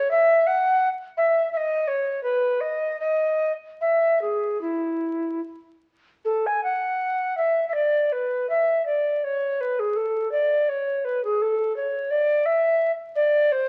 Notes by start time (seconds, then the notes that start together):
Already playing: C#5
0.11 E5
0.47 F#5
1.17 E5
1.52 E5
1.57 D#5
1.88 C#5
2.23 B4
2.61 D#5
3.00 D#5
3.81 E5
4.21 G#4
4.61 E4
6.25 A4
6.46 G#5
6.64 F#5
7.37 E5
7.69 E5
7.74 D5
8.12 B4
8.49 E5
8.86 D5
9.24 C#5
9.61 B4
9.79 G#4
9.96 A4
10.32 D5
10.69 C#5
11.05 B4
11.24 G#4
11.42 A4
11.77 C#5
12.11 D5
12.46 E5
13.16 D5
13.52 C5